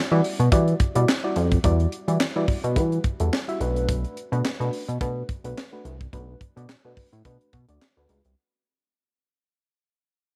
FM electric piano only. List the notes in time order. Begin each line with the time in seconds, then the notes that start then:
0.12 G3 E4 F#4 D5
0.52 G3 E4 F#4 D5
0.95 G3 E4 F#4 D5
1.24 G3 E4 F#4 D5
1.64 G3 E4 F#4 D5
2.08 G3 E4 F#4 D5
2.36 G3 E4 F#4 D5
2.76 G3 E4 F#4 B4
3.20 G3 E4 F#4 A4
3.48 G3 E4 F#4 E5
3.60 A3 D4 F#4 B4
4.32 A3 D4 F#4 B4
4.60 A3 D4 F#4 B4
5.01 A3 D4 F#4 B4
5.44 A3 D4 F#4 B4
5.72 A3 D4 F#4 B4
6.13 A3 D4 F#4 B4
6.56 A3 D4 F#4 D5
6.85 A3 D4 F#4 B4
7.25 A3 D4 F#4 B4
7.69 A3 D4 F#4 D5
7.97 A3 D4 F#4 B4